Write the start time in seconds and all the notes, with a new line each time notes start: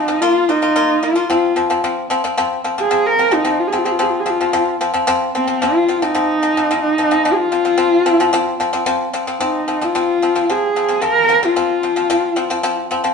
Already playing: D#4
0.08 F3 C4
0.21 A#3 F4
0.49 A#3 D#4 F4
0.62 A#3 F4
0.76 A#3 F4
1.02 A#3 F4
1.15 A#3 F4
1.30 F3 C4 F4
1.56 F3 C4
1.70 F3 C4
1.84 F3 C4
2.10 F3 C4
2.24 F3 C4
2.38 F3 C4
2.64 F3 C4
2.78 F3 C4 G#4
2.91 F3 C4
3.06 A#4
3.19 F3 C4
3.31 F3 C4 D#4
3.45 F3 C4
3.59 F4
3.67 G#4
3.72 F3 C4
3.78 F4
3.84 F3 C4 G#4
3.91 F4
3.99 F3 C4 G#4
4.10 F4
4.20 G#4
4.26 F3 C4 F4
4.41 F3 C4
4.53 F3 C4
4.81 F3 C4
4.94 F3 C4
5.07 F3 C4
5.35 F3 C4
5.47 F3 C4
5.62 F3 C4 F4
5.88 F3 C4
5.97 F4
6.02 F3 C4 D#4
6.15 F3 C4
6.42 F3 C4
6.57 F3 C4
6.71 F3 C4
6.82 D#4
6.98 F3 C4
7.11 F3 C4
7.25 F3 C4
7.33 G#4
7.37 F4
7.52 F3 C4
7.65 F3 C4
7.78 F3 C4
8.06 F3 C4
8.20 F3 C4
8.33 F3 C4
8.60 F3 C4
8.73 F3 C4
8.86 F3 C4
9.13 F3 C4
9.27 F3 C4
9.40 F3 C4 D#4
9.68 F3 C4
9.81 F3 C4 F4
9.95 F3 C4
10.22 F3 C4
10.35 F3 C4
10.50 F3 C4 G#4
10.76 F3 C4
10.89 F3 C4
11.02 F3 C4 A#4
11.29 F3 C4
11.43 F3 C4 F4
11.56 F3 C4
11.83 F3 C4
11.96 F3 C4
12.10 F3 C4
12.36 F3 C4
12.50 F3 C4
12.63 F3 C4
12.91 F3 C4
13.04 F3 C4